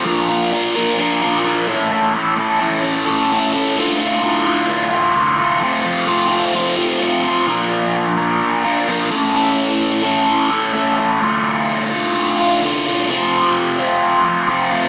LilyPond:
\new Staff \with { instrumentName = "Overdriven electric guitar" } { \time 4/4 \key d \minor \tempo 4 = 129 <bes, f bes d' f' bes'>8 <bes d' f' bes'>8 <bes d' f' bes'>8 <bes, f bes d' f' bes'>8 <bes d' f' bes'>8 <bes, f bes d' f' bes'>8 <bes d' f' bes'>8 <a, e a cis' e' a'>8 | <a, e a cis' e' a'>8 <a cis' e' a'>8 <a cis' e' a'>8 <a, e a cis' e' a'>8 <a cis' e' a'>8 <a, e a cis' e' a'>8 <a cis' e' a'>8 <a cis' e' a'>8 | <d, a, d a f'>8 <d a f'>8 <a, d a f'>8 <d, a, d a f'>8 <a, d a f'>8 <d, a, d a f'>8 <a, d a f'>8 <d a f'>8 | <f, c f a c' f'>8 <f a c' f'>8 <f a c' f'>8 <f, c f a c' f'>8 <f a c' f'>8 <f, c f a c' f'>8 <f a c' f'>8 <f a c' f'>8 |
<bes, f bes d' f' bes'>4. <bes d' f' bes'>4 <bes d' f' bes'>8 <bes, f bes d' f' bes'>8 <a, e a cis' e' a'>8 | <a, e a cis' e' a'>4. <a cis' e' a'>4 <a cis' e' a'>8 <a, e a cis' e' a'>8 <a cis' e' a'>8 | <d, a, d a f'>4. <d a f'>4 <d a f'>8 <d, a, d a f'>8 <d a f'>8 | <f, c f a c' f'>4. <f a c' f'>4 <f a c' f'>8 <f, c f a c' f'>8 <f a c' f'>8 | }